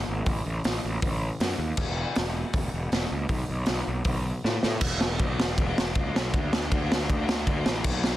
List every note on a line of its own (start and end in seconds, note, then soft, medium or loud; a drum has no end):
0.09 0.21 G#1 medium
0.26 0.39 A1 loud
0.26 kick loud
0.26 open hi-hat medium
0.46 0.59 A1 medium
0.64 0.78 A1 medium
0.64 snare loud
0.64 open hi-hat medium
0.84 0.97 A1 medium
1.02 1.28 A1 medium
1.02 kick loud
1.02 open hi-hat medium
1.40 1.53 F#2 medium
1.40 snare loud
1.40 open hi-hat medium
1.58 1.72 D#2 medium
1.77 2.04 E1 loud
1.77 kick loud
1.77 crash medium
2.15 2.43 E1 loud
2.15 snare loud
2.15 open hi-hat medium
2.53 2.67 E1 medium
2.53 kick loud
2.53 open hi-hat medium
2.74 2.87 E1 medium
2.92 3.05 E1 medium
2.92 snare loud
2.92 open hi-hat medium
3.12 3.24 C#2 medium
3.29 3.42 B1 loud
3.29 kick loud
3.29 open hi-hat medium
3.50 3.62 B1 medium
3.66 3.81 B1 medium
3.66 snare loud
3.66 open hi-hat medium
3.87 4.00 B1 medium
4.05 4.31 B1 medium
4.05 kick loud
4.05 open hi-hat medium
4.44 4.57 A2 medium
4.44 snare medium
4.63 4.76 A2 medium
4.63 snare medium
4.81 5.17 E1 loud
4.81 kick loud
4.81 crash loud
5.01 snare loud
5.19 5.38 B1 loud
5.19 kick loud
5.19 ride medium
5.39 5.57 E1 medium
5.39 snare loud
5.58 5.76 E1 loud
5.58 kick loud
5.58 ride medium
5.77 5.95 E1 medium
5.77 snare loud
5.95 6.14 C#2 medium
5.95 kick loud
5.95 ride medium
6.15 6.33 B1 loud
6.15 snare loud
6.34 6.52 D2 loud
6.34 kick loud
6.34 ride medium
6.52 6.70 D2 medium
6.52 snare loud
6.72 7.07 D2 loud
6.72 kick loud
6.72 ride medium
6.92 snare loud
7.09 7.45 D2 loud
7.09 kick loud
7.09 ride medium
7.29 snare loud
7.47 7.65 D2 loud
7.47 kick loud
7.47 ride medium
7.65 7.84 A1 loud
7.65 snare loud
7.84 8.17 B1 loud
7.84 kick loud
7.84 crash loud
8.04 snare loud